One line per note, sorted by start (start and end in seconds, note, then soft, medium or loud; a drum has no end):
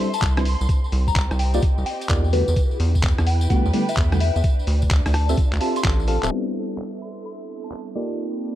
0.00 1.06 A4 medium
0.00 0.46 E5 medium
0.00 0.11 C6 medium
0.00 1.22 C6 medium
0.14 0.24 A5 medium
0.14 closed hi-hat medium
0.14 tambourine medium
0.22 0.56 C2 loud
0.22 kick loud
0.22 clap loud
0.22 closed hi-hat medium
0.22 tambourine medium
0.37 0.42 G3 medium
0.37 0.42 C4 medium
0.37 0.42 D4 medium
0.37 0.42 E4 medium
0.37 0.42 B4 medium
0.37 cross-stick medium
0.37 tambourine soft
0.45 2.33 C4 medium
0.45 open hi-hat loud
0.61 0.67 C2 medium
0.61 tambourine medium
0.69 kick loud
0.69 closed hi-hat medium
0.69 tambourine medium
0.84 tambourine soft
0.89 1.26 C2 loud
0.89 3.20 G4 medium
0.89 open hi-hat loud
1.08 1.13 A#5 medium
1.08 kick medium
1.08 tambourine medium
1.16 kick loud
1.16 clap loud
1.16 closed hi-hat medium
1.16 tambourine medium
1.31 1.60 C2 medium
1.31 2.33 D#5 medium
1.31 cross-stick soft
1.31 tambourine soft
1.39 1.55 G5 medium
1.39 open hi-hat loud
1.54 1.59 A#3 medium
1.54 1.59 D#4 medium
1.54 1.59 F4 medium
1.54 1.59 G4 medium
1.54 1.59 D5 loud
1.54 closed hi-hat soft
1.54 tambourine medium
1.62 kick loud
1.62 closed hi-hat medium
1.62 tambourine medium
1.78 1.84 C2 medium
1.78 tambourine soft
1.86 2.02 G5 medium
1.86 open hi-hat loud
2.01 closed hi-hat medium
2.01 tambourine medium
2.09 2.43 E2 loud
2.09 2.24 A#3 medium
2.09 2.24 D#4 medium
2.09 2.24 F4 medium
2.09 2.24 G4 medium
2.09 2.24 D5 medium
2.09 kick loud
2.09 clap loud
2.09 closed hi-hat medium
2.09 tambourine medium
2.24 tambourine soft
2.33 2.42 D3 medium
2.33 2.42 G3 medium
2.33 2.42 A3 medium
2.33 2.42 B3 medium
2.33 4.44 E4 medium
2.33 2.42 F#4 medium
2.33 2.80 B4 medium
2.33 open hi-hat loud
2.48 2.55 E2 medium
2.48 tambourine medium
2.56 kick loud
2.56 closed hi-hat medium
2.56 tambourine medium
2.71 5.20 B4 loud
2.71 tambourine soft
2.80 3.14 E2 loud
2.80 open hi-hat loud
2.95 kick medium
2.95 tambourine medium
3.03 kick loud
3.03 clap loud
3.03 closed hi-hat medium
3.03 tambourine medium
3.19 3.48 E2 medium
3.19 cross-stick soft
3.19 tambourine soft
3.27 3.43 G5 medium
3.27 5.20 G5 medium
3.27 open hi-hat loud
3.41 closed hi-hat soft
3.41 tambourine medium
3.50 3.64 D3 medium
3.50 3.64 G3 medium
3.50 3.64 A3 medium
3.50 3.64 B3 medium
3.50 3.64 F#4 medium
3.50 3.86 G5 medium
3.50 kick loud
3.50 closed hi-hat medium
3.50 tambourine medium
3.66 3.72 E2 medium
3.66 tambourine soft
3.74 3.82 D3 medium
3.74 3.82 G3 medium
3.74 3.82 A3 medium
3.74 3.82 B3 medium
3.74 3.82 G4 loud
3.74 open hi-hat loud
3.89 3.99 E5 medium
3.89 closed hi-hat medium
3.89 tambourine medium
3.97 4.31 E2 loud
3.97 kick loud
3.97 clap loud
3.97 closed hi-hat medium
3.97 tambourine medium
4.12 4.17 D3 medium
4.12 4.17 G3 medium
4.12 4.17 A3 medium
4.12 4.17 B3 medium
4.12 4.17 F#4 medium
4.12 cross-stick medium
4.12 tambourine soft
4.20 4.30 E5 medium
4.20 open hi-hat loud
4.36 4.42 E2 medium
4.36 4.41 E5 medium
4.36 tambourine medium
4.44 6.99 D4 medium
4.44 kick loud
4.44 closed hi-hat medium
4.44 tambourine medium
4.59 tambourine soft
4.67 5.01 D2 loud
4.67 open hi-hat loud
4.82 kick medium
4.82 tambourine medium
4.90 8.55 A4 medium
4.90 kick loud
4.90 clap loud
4.90 closed hi-hat medium
4.90 tambourine medium
5.06 5.35 D2 medium
5.06 cross-stick medium
5.06 open hi-hat medium
5.06 tambourine soft
5.14 5.30 A5 medium
5.14 cross-stick medium
5.14 open hi-hat loud
5.29 5.34 C4 medium
5.29 5.34 F4 medium
5.29 6.32 F4 medium
5.29 5.34 G4 medium
5.29 5.34 A4 medium
5.29 5.34 E5 loud
5.29 closed hi-hat soft
5.29 tambourine medium
5.37 kick loud
5.37 closed hi-hat medium
5.37 tambourine medium
5.53 5.59 D2 medium
5.53 clap medium
5.53 tambourine soft
5.61 6.06 C4 medium
5.61 6.06 F4 medium
5.61 6.06 G4 medium
5.61 6.06 A4 medium
5.61 6.06 E5 medium
5.61 5.73 A5 medium
5.61 open hi-hat loud
5.76 5.82 C6 medium
5.76 closed hi-hat medium
5.76 tambourine medium
5.84 6.18 A1 loud
5.84 kick loud
5.84 clap loud
5.84 closed hi-hat medium
5.84 tambourine medium
6.00 tambourine soft
6.08 6.17 C4 medium
6.08 6.17 F4 medium
6.08 6.17 G4 medium
6.08 6.17 A4 medium
6.08 6.17 F5 medium
6.08 6.18 A5 medium
6.08 open hi-hat loud
6.23 6.30 D1 medium
6.23 6.30 C4 medium
6.23 6.30 F4 medium
6.23 6.30 G4 medium
6.23 6.30 A4 medium
6.23 6.30 E5 loud
6.23 6.28 A5 medium
6.23 clap medium
6.23 tambourine medium
6.31 7.93 G3 medium
6.31 7.93 B3 medium
6.31 7.93 C4 medium
6.31 7.93 D4 medium
6.31 7.93 E4 medium
6.70 tambourine medium
6.78 clap loud
6.78 tambourine medium
6.86 7.96 E5 medium
7.02 7.18 C6 medium
7.17 tambourine medium
7.25 7.61 C6 medium
7.25 tambourine medium
7.40 tambourine soft
7.64 7.74 A5 medium
7.64 tambourine medium
7.72 clap loud
7.72 tambourine medium
7.87 tambourine soft
7.95 8.55 A#3 medium
7.95 8.55 C4 medium
7.95 8.55 D#4 medium
7.95 8.55 F4 medium
7.95 8.55 G4 medium
7.95 8.55 D5 medium
8.06 8.55 G3 medium
8.06 tambourine medium
8.18 tambourine medium
8.35 tambourine soft